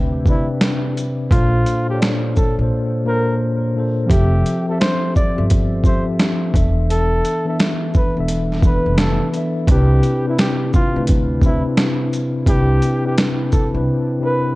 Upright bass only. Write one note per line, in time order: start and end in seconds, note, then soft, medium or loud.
0.00 0.45 D2 medium
1.31 1.62 A#1 loud
2.59 2.69 A#1 medium
4.10 4.42 F1 loud
5.38 6.03 G1 medium
6.54 7.20 E1 loud
8.17 8.82 E1 medium
8.86 9.18 F1 medium
9.68 9.99 C2 loud
10.96 11.61 D2 medium
12.47 12.78 C2 loud
13.74 13.86 C2 medium